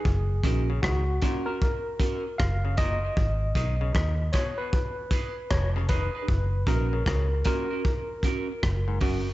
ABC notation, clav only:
X:1
M:4/4
L:1/16
Q:"Swing 16ths" 1/4=77
K:F#
V:1 name="Clav" clef=bass
z2 D, C, D, z A,, z6 C, A,, z | z2 D, C, D, z B,, z6 C, D, z | z2 D, C, C, z A,, z6 G,, F,, z |]